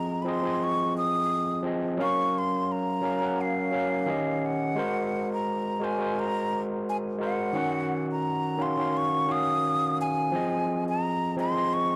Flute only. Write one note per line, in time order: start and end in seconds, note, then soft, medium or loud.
0.00 0.23 A#5 medium
0.22 0.30 B5 medium
0.29 0.65 C6 loud
0.63 0.97 C#6 loud
0.98 1.62 D#6 loud
2.02 2.40 C#6 loud
2.38 2.73 C6 medium
2.72 3.42 A#5 loud
3.41 4.47 F5 loud
4.45 5.32 F#5 loud
5.33 5.86 A#5 medium
5.84 6.21 G#5 medium
6.19 6.61 A#5 loud
6.89 6.97 G#5 loud
7.24 8.07 F#5 loud
8.12 8.64 A#5 loud
8.62 8.98 C6 loud
8.97 9.33 C#6 loud
9.32 10.00 D#6 loud
10.01 10.84 G#5 loud
10.89 11.35 A#5 loud
11.40 11.75 C6 loud
11.73 11.96 C#6 loud